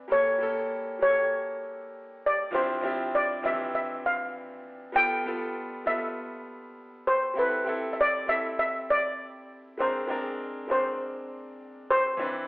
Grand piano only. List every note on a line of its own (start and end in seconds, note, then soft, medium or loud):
0.00 0.12 E3 medium
0.00 0.12 C4 medium
0.00 0.12 D4 medium
0.00 0.12 B4 medium
0.08 0.34 G3 medium
0.08 0.35 A#3 medium
0.08 0.36 C#4 medium
0.08 0.36 A4 medium
0.39 0.90 G3 medium
0.39 0.91 A#3 medium
0.39 0.91 C#4 medium
0.43 0.92 A4 medium
0.99 2.01 G3 medium
0.99 2.02 A#3 medium
0.99 2.03 C#4 medium
0.99 1.08 G4 medium
1.10 2.06 A4 medium
2.51 2.77 F3 medium
2.51 2.77 C4 medium
2.51 2.78 D4 medium
2.51 2.79 E4 medium
2.51 2.79 G4 medium
2.81 3.32 F3 medium
2.81 3.33 C4 medium
2.81 3.34 D4 medium
2.81 3.34 E4 medium
2.85 3.34 G4 medium
3.42 4.45 E3 medium
3.42 4.44 F3 medium
3.42 4.44 C4 medium
3.42 4.44 D4 medium
3.46 4.46 G4 medium
4.92 5.19 G3 medium
4.92 5.19 B3 medium
4.92 5.20 F4 medium
4.96 5.21 A4 medium
5.24 5.75 G3 medium
5.24 5.76 B3 medium
5.24 5.76 F4 medium
5.24 5.77 A4 medium
5.85 6.86 G3 medium
5.85 6.86 B3 medium
5.85 6.87 F4 medium
5.85 6.88 A4 medium
7.34 7.60 G3 medium
7.34 7.61 C4 medium
7.34 7.62 E4 medium
7.38 7.63 A4 medium
7.64 8.16 G3 medium
7.64 8.17 C4 medium
7.64 8.18 E4 medium
7.69 8.18 A4 medium
8.26 9.27 G3 medium
8.26 9.28 C4 medium
8.26 9.29 E4 medium
8.30 9.30 A4 medium
9.78 10.03 G#3 medium
9.78 10.04 C4 medium
9.78 10.05 D4 medium
9.78 10.05 A#4 medium
10.07 10.58 G#3 medium
10.07 10.59 C4 medium
10.07 10.60 D4 medium
10.07 10.60 A#4 medium
10.67 11.69 G#3 medium
10.67 11.70 C4 medium
10.67 11.70 D4 medium
10.67 11.71 A#4 medium
12.17 12.44 E3 medium
12.17 12.44 C4 medium
12.17 12.45 D4 medium
12.17 12.46 B4 medium